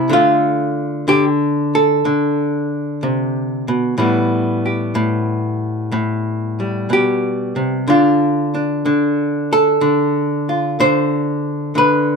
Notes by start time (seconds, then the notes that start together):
Already playing: C3 E4 G4
0.09 D3 A3 F4
1.08 D3 G4
1.75 A4
2.05 D3
3.03 C3
3.68 B2
3.98 A2 E3 G3 B3
4.66 G4
4.95 A2
5.92 A2
6.60 G3
6.90 B2 G4
7.56 C3
7.88 D3 D4 F4
8.54 D4
8.86 D3
9.53 A4
9.81 D3
10.49 F4
10.80 D3 C5
11.75 D3 B4